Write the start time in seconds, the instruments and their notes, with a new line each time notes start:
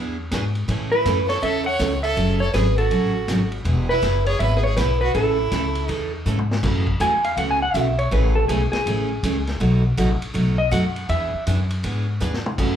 Already playing: upright bass E2, steel-string acoustic guitar E3 B3 D4 G#4
0.31 upright bass G#2, steel-string acoustic guitar E3 B3 D4 G#4, snare, hi-hat pedal, ride
0.55 ride
0.68 upright bass A2, steel-string acoustic guitar C#3 E3 A3 C#4 A4, ride
0.92 fiddle E4, electric slide guitar B4
1.05 upright bass F#2, steel-string acoustic guitar C#3 E3 A3 C#4 A4, snare, hi-hat pedal, ride
1.28 fiddle A4, electric slide guitar C#5, snare, ride
1.42 upright bass E2, steel-string acoustic guitar C#3 E3 A3 C#4 A4, fiddle A4, electric slide guitar E5, ride
1.65 fiddle C#5, electric slide guitar F#5
1.79 upright bass C#2, steel-string acoustic guitar C#3 E3 A3 C#4 A4, snare, hi-hat pedal, ride
2.03 fiddle A4, electric slide guitar E5, ride
2.16 upright bass F#1, steel-string acoustic guitar C#3 F#3 A3 C#4 G#4, ride
2.40 fiddle A4, electric slide guitar C#5
2.54 upright bass G#1, steel-string acoustic guitar C#3 F#3 A3 C#4 G#4, fiddle G#4, electric slide guitar B4, snare, hi-hat pedal, ride
2.78 fiddle F#4, electric slide guitar A4, ride
2.90 upright bass A1, steel-string acoustic guitar C#3 F#3 A3 C#4 G#4, ride
3.28 upright bass G#1, steel-string acoustic guitar C#3 F#3 A3 C#4 G#4, snare, hi-hat pedal, ride
3.52 ride
3.65 upright bass E1, steel-string acoustic guitar E3 B3 E4 G#4, ride
3.89 fiddle E4, electric slide guitar B4
4.02 upright bass F#1, steel-string acoustic guitar E3 B3 E4 G#4, snare, hi-hat pedal, ride
4.26 fiddle G#4, electric slide guitar C#5, ride
4.39 upright bass G#1, steel-string acoustic guitar E3 B3 E4 G#4, fiddle B4, electric slide guitar E5, ride
4.57 fiddle G#4, electric slide guitar B4
4.63 fiddle G#4, electric slide guitar C#5
4.77 upright bass B1, steel-string acoustic guitar E3 B3 E4 G#4, fiddle E4, electric slide guitar B4, snare, hi-hat pedal, ride
5.01 fiddle F#4, electric slide guitar B4
5.14 upright bass A1, steel-string acoustic guitar C#3 E3 A3 C#4 A4, fiddle E4, electric slide guitar A4, ride
5.51 upright bass C#2, steel-string acoustic guitar C#3 E3 A3 C#4 A4, snare, hi-hat pedal, ride
5.75 ride
5.86 upright bass E2, steel-string acoustic guitar C#3 E3 A3 C#4 A4, fiddle D#4, electric slide guitar G#4, ride
6.26 upright bass G#2, steel-string acoustic guitar C#3 E3 A3 C#4 A4, hi-hat pedal
6.39 mid tom
6.51 snare
6.63 upright bass F#2, steel-string acoustic guitar C#3 E3 A3 C#4 F#4, kick, snare, crash
6.87 kick
7.00 upright bass E2, steel-string acoustic guitar C#3 E3 A3 C#4 F#4, electric slide guitar G#5, hi-hat pedal, ride
7.24 electric slide guitar F5, ride
7.37 upright bass C#2, steel-string acoustic guitar C#3 E3 A3 C#4 F#4, electric slide guitar F#5, ride
7.51 electric slide guitar G#5
7.62 electric slide guitar F#5
7.74 upright bass B1, steel-string acoustic guitar C#3 E3 A3 C#4 F#4, electric slide guitar E5, hi-hat pedal, ride
7.99 electric slide guitar C#5, ride
8.11 upright bass A1, steel-string acoustic guitar C#3 E3 A3 C#4 G#4, electric slide guitar B4, ride
8.35 electric slide guitar A4
8.48 upright bass B1, steel-string acoustic guitar C#3 E3 A3 C#4 G#4, electric slide guitar G#4, hi-hat pedal, ride
8.72 electric slide guitar G#4, muted upright bass stroke, snare, ride
8.86 upright bass A1, steel-string acoustic guitar C#3 E3 A3 C#4 G#4, ride
9.23 upright bass C#2, steel-string acoustic guitar C#3 E3 A3 C#4 G#4, hi-hat pedal, ride
9.47 snare, ride
9.60 upright bass B1, steel-string acoustic guitar B2 F#3 A3 D#4 F#4, ride
9.97 upright bass A1, steel-string acoustic guitar B2 F#3 A3 D#4 F#4, hi-hat pedal, ride
10.21 muted upright bass stroke, ride
10.34 upright bass B1, steel-string acoustic guitar B2 F#3 A3 D#4 F#4, ride
10.58 electric slide guitar D#5
10.71 upright bass F#2, steel-string acoustic guitar B2 F#3 A3 D#4 F#4, electric slide guitar F#5, hi-hat pedal, ride
10.96 ride
11.09 upright bass E2, steel-string acoustic guitar E3 B3 D4 G#4, electric slide guitar E5, ride
11.33 muted upright bass stroke
11.47 upright bass F#2, steel-string acoustic guitar E3 B3 D4 G#4, hi-hat pedal, ride
11.70 ride
11.83 upright bass G#2, steel-string acoustic guitar E3 B3 D4 G#4, ride
12.20 upright bass E2, steel-string acoustic guitar E3 B3 D4 G#4, hi-hat pedal, mid tom
12.34 snare
12.46 mid tom
12.58 upright bass F#2, steel-string acoustic guitar C#3 E3 A3 C#4 F#4, kick, crash